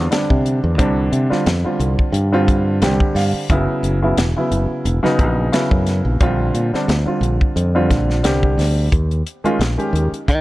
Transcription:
0.11 0.73 D3 medium
0.11 0.73 G3 medium
0.11 0.73 C4 medium
0.11 0.73 D4 medium
0.11 snare loud
0.11 closed hi-hat medium
0.30 0.59 C3 medium
0.30 kick medium
0.46 closed hi-hat medium
0.64 0.79 E2 medium
0.78 1.08 C2 medium
0.78 1.25 D3 medium
0.78 1.26 G3 medium
0.78 1.26 C4 medium
0.78 1.26 D4 loud
0.78 kick loud
0.78 closed hi-hat medium
1.12 1.28 C3 medium
1.12 closed hi-hat medium
1.30 1.45 D3 medium
1.30 1.45 G3 medium
1.30 1.45 C4 medium
1.30 1.45 F4 medium
1.30 muted fingered electric bass stroke soft
1.30 snare soft
1.46 1.62 F2 medium
1.46 1.55 C4 soft
1.46 1.56 G4 soft
1.46 snare loud
1.46 closed hi-hat medium
1.64 2.25 D3 medium
1.64 2.26 G3 medium
1.64 2.26 C4 medium
1.64 2.26 F4 medium
1.64 muted fingered electric bass stroke soft
1.79 1.96 C2 medium
1.79 closed hi-hat medium
1.99 kick medium
2.12 2.83 G2 medium
2.12 closed hi-hat medium
2.32 2.77 D3 medium
2.32 2.78 G3 medium
2.32 2.78 C4 medium
2.32 2.78 F4 loud
2.48 kick medium
2.48 closed hi-hat medium
2.82 2.98 C2 medium
2.82 3.44 D3 medium
2.82 3.44 G3 medium
2.82 3.44 C4 medium
2.82 3.44 G4 medium
2.82 3.14 G5 medium
2.82 snare loud
2.82 closed hi-hat medium
3.00 kick medium
3.15 3.31 G2 medium
3.15 3.48 F5 medium
3.15 snare soft
3.15 open hi-hat medium
3.33 muted fingered electric bass stroke soft
3.50 3.66 F#1 loud
3.50 3.97 C#3 loud
3.50 3.97 F#3 loud
3.50 3.97 B3 medium
3.50 3.97 E4 loud
3.50 kick loud
3.50 closed hi-hat medium
3.83 4.12 F#1 medium
3.83 closed hi-hat medium
4.02 4.16 C#3 medium
4.02 4.16 F#3 medium
4.02 4.16 B3 medium
4.02 4.17 E4 medium
4.17 4.33 E1 medium
4.17 4.26 B3 soft
4.17 4.27 F#4 soft
4.17 snare loud
4.17 closed hi-hat medium
4.36 4.97 C#3 medium
4.36 4.97 F#3 medium
4.36 4.97 B3 medium
4.36 4.97 E4 medium
4.51 4.67 F#1 medium
4.51 closed hi-hat medium
4.70 muted fingered electric bass stroke soft
4.85 5.01 E1 medium
4.85 closed hi-hat medium
5.03 5.48 C#3 medium
5.03 5.48 F#3 medium
5.03 5.48 B3 medium
5.03 5.49 D#4 loud
5.03 muted fingered electric bass stroke soft
5.03 snare soft
5.19 5.48 A#1 loud
5.19 kick medium
5.19 closed hi-hat medium
5.52 6.15 C#3 medium
5.52 6.15 F#3 medium
5.52 6.15 B3 medium
5.52 6.15 E4 medium
5.52 snare loud
5.52 closed hi-hat medium
5.71 6.01 F#2 medium
5.71 kick medium
5.87 snare soft
5.87 closed hi-hat medium
6.05 6.18 A#1 medium
6.20 6.50 A#1 medium
6.20 6.68 D3 medium
6.20 6.68 G3 medium
6.20 6.68 C4 medium
6.20 6.69 F4 loud
6.20 kick loud
6.20 closed hi-hat medium
6.54 6.71 A#2 medium
6.54 closed hi-hat medium
6.73 6.87 D3 medium
6.73 6.87 G3 medium
6.73 6.88 C4 medium
6.73 6.88 D4 medium
6.73 muted fingered electric bass stroke soft
6.73 snare soft
6.88 7.04 D2 loud
6.88 6.98 C4 soft
6.88 6.98 F4 soft
6.88 snare loud
6.88 closed hi-hat medium
7.06 7.67 D3 medium
7.06 7.67 G3 medium
7.06 7.67 C4 medium
7.06 7.68 F4 medium
7.06 muted fingered electric bass stroke soft
7.21 7.38 A#1 loud
7.21 closed hi-hat medium
7.41 kick medium
7.56 7.90 F2 medium
7.56 closed hi-hat medium
7.75 8.20 D3 medium
7.75 8.20 G3 medium
7.75 8.20 C4 medium
7.75 8.20 F4 loud
7.91 8.21 A#1 medium
7.91 kick medium
7.91 snare soft
7.91 closed hi-hat medium
8.10 snare soft
8.23 8.55 C2 medium
8.23 8.86 D3 medium
8.23 8.86 G3 medium
8.23 8.86 C4 medium
8.23 8.87 G4 medium
8.23 snare loud
8.23 closed hi-hat medium
8.43 kick medium
8.58 8.88 D2 medium
8.58 snare soft
8.58 open hi-hat medium
8.92 9.22 D#2 medium
8.92 kick medium
8.92 closed hi-hat medium
9.11 closed hi-hat soft
9.27 closed hi-hat medium
9.44 9.58 D#3 medium
9.44 9.59 G#3 medium
9.44 9.58 C#4 medium
9.44 9.59 F4 loud
9.44 muted fingered electric bass stroke soft
9.44 closed hi-hat soft
9.59 9.76 A#1 medium
9.59 9.69 C#4 soft
9.59 9.69 F4 soft
9.59 snare medium
9.59 closed hi-hat medium
9.77 10.08 D#3 medium
9.77 10.09 G#3 medium
9.77 10.09 C#4 medium
9.77 10.09 G4 medium
9.77 closed hi-hat soft
9.93 10.09 D#2 medium
9.93 closed hi-hat soft
10.12 10.20 C#4 soft
10.12 10.21 D#4 soft
10.12 muted fingered electric bass stroke soft
10.12 closed hi-hat soft
10.28 10.41 D#3 medium
10.28 kick medium
10.28 closed hi-hat medium

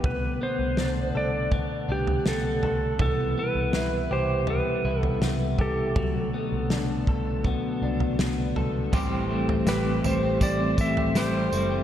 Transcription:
0.00 0.36 C2 medium
0.00 2.96 B2 medium
0.00 2.97 D3 medium
0.00 2.97 A3 medium
0.00 0.41 B3 medium
0.00 0.11 E4 medium
0.00 0.11 G4 medium
0.00 2.97 F#5 medium
0.00 kick medium
0.04 0.43 B4 medium
0.04 floor tom loud
0.42 1.52 B3 medium
0.42 1.17 C5 medium
0.59 0.76 C2 medium
0.77 1.10 C2 medium
0.77 1.88 D4 medium
0.77 snare medium
1.15 1.64 C2 medium
1.15 2.62 A4 medium
1.15 1.50 D5 medium
1.52 2.26 B3 medium
1.52 kick medium
1.52 floor tom medium
1.89 2.21 C2 medium
1.89 3.07 D4 medium
1.89 2.25 G4 medium
2.07 floor tom medium
2.26 2.59 C2 medium
2.26 3.00 B3 medium
2.26 3.00 A4 medium
2.26 snare loud
2.63 2.96 C2 medium
2.63 3.08 A4 medium
2.63 floor tom soft
2.99 3.33 C2 medium
2.99 8.89 B2 medium
2.99 5.94 C3 medium
2.99 5.93 E3 medium
2.99 5.94 G3 medium
2.99 3.37 B3 medium
2.99 5.93 E4 medium
2.99 3.39 A4 medium
2.99 kick medium
2.99 floor tom medium
3.38 4.47 B3 medium
3.38 4.12 B4 medium
3.55 3.72 C2 medium
3.73 4.06 C2 medium
3.73 4.84 E4 medium
3.73 snare loud
4.11 4.60 C2 medium
4.11 5.58 G4 medium
4.11 4.50 C5 loud
4.47 5.22 B3 medium
4.47 5.01 B4 medium
4.47 floor tom medium
4.85 5.18 C2 loud
4.85 6.04 E4 medium
5.01 5.19 A4 medium
5.01 floor tom medium
5.22 5.54 C2 medium
5.22 6.34 B3 medium
5.22 snare loud
5.58 5.92 C2 medium
5.58 6.04 G4 medium
5.58 8.15 A4 loud
5.58 kick medium
5.58 floor tom soft
5.96 6.29 C2 medium
5.96 8.90 D3 medium
5.96 8.93 F#3 medium
5.96 8.90 F#3 medium
5.96 8.90 A3 medium
5.96 8.90 F#4 medium
5.96 kick medium
5.96 floor tom medium
6.34 7.44 B3 medium
6.52 6.69 C2 medium
6.70 7.03 C2 medium
6.70 7.81 D4 medium
6.70 snare medium
7.07 7.56 C2 medium
7.07 8.56 A4 medium
7.07 kick medium
7.44 8.18 B3 medium
7.44 kick medium
7.44 floor tom medium
7.82 8.14 C2 medium
7.82 9.01 D4 medium
8.00 floor tom medium
8.19 8.51 C2 medium
8.19 9.00 B3 medium
8.19 snare loud
8.56 8.88 C2 medium
8.56 8.93 A4 medium
8.56 floor tom soft
8.92 9.58 A1 loud
8.92 9.29 A2 medium
8.92 9.30 E3 medium
8.92 10.41 E3 medium
8.92 11.83 E3 medium
8.92 9.30 G3 medium
8.92 11.83 G3 medium
8.92 11.83 A3 medium
8.92 11.83 C4 medium
8.92 9.30 C4 medium
8.92 9.29 E4 medium
8.92 11.83 G4 medium
8.92 9.67 G4 medium
8.92 9.28 C5 loud
8.92 kick loud
8.92 floor tom loud
8.92 tambourine medium
9.12 9.48 C4 medium
9.29 9.66 G3 medium
9.29 10.03 A3 medium
9.29 9.66 C4 medium
9.29 9.67 E4 medium
9.29 9.66 C5 medium
9.49 9.85 C4 medium
9.49 floor tom medium
9.66 9.99 A1 medium
9.66 10.03 A2 medium
9.66 10.04 E3 medium
9.66 10.04 G3 medium
9.66 10.04 C4 medium
9.66 10.03 E4 medium
9.66 10.42 G4 medium
9.66 10.06 B4 medium
9.66 snare loud
9.66 tambourine medium
9.86 10.22 C4 medium
10.03 10.37 A1 loud
10.03 10.39 G3 medium
10.03 10.77 A3 medium
10.03 10.40 C4 soft
10.03 10.41 E4 medium
10.03 10.40 C5 medium
10.03 10.43 C5 medium
10.03 floor tom medium
10.03 tambourine medium
10.23 10.59 C4 medium
10.40 10.74 A1 medium
10.40 11.83 E3 medium
10.40 10.77 G3 medium
10.40 10.78 C4 medium
10.40 10.77 E4 medium
10.40 11.15 G4 medium
10.40 10.76 C5 medium
10.40 10.80 D5 medium
10.40 kick medium
10.40 tambourine medium
10.60 10.96 C4 medium
10.77 11.11 A1 medium
10.77 11.14 G3 soft
10.77 11.51 A3 medium
10.77 11.14 C4 soft
10.77 11.15 E4 soft
10.77 11.14 C5 medium
10.77 kick loud
10.77 tambourine medium
10.81 11.17 E5 loud
10.97 11.33 C4 medium
10.97 floor tom medium
11.14 11.48 A1 loud
11.14 11.52 A2 medium
11.14 11.52 E3 medium
11.14 11.52 G3 medium
11.14 11.52 C4 medium
11.14 11.52 E4 loud
11.14 11.83 G4 medium
11.14 11.51 C5 loud
11.14 11.83 C5 medium
11.14 snare loud
11.14 tambourine medium
11.34 11.69 C4 medium
11.52 11.83 F#1 medium
11.52 11.83 G3 soft
11.52 11.83 A3 medium
11.52 11.83 C4 soft
11.52 11.83 E4 soft
11.52 11.83 C5 medium
11.52 tambourine medium
11.71 11.83 C4 medium

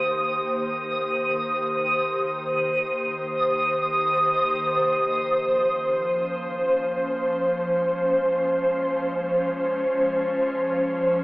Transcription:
0.00 4.74 D#3 medium
0.00 8.50 A#3 medium
0.00 4.74 G4 medium
0.00 11.24 C5 medium
0.00 4.75 D#6 medium
4.74 11.24 F3 medium
5.10 11.24 C#4 medium
7.06 11.24 G#3 medium

